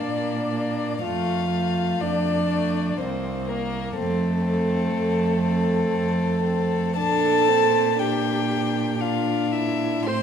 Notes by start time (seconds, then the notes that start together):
Already playing: A#3 D4 D5
0.05 A#2
0.55 A#3
1.03 F2 A3 F4 F5
1.53 A3
2.01 F2 D4 D5
2.50 A3
2.98 C2 A#3 C4 C5
3.48 A#3 A#4
3.96 F2 A3 C4 A4
4.45 C4
4.93 F2
5.41 C4
5.91 F2
6.43 C4
6.97 A#2 D4 A4 A5
7.49 C4
7.99 D4 G4 G5
9.00 D4 F4 F5
9.52 E4 E5
10.06 A2 C4 C5 C6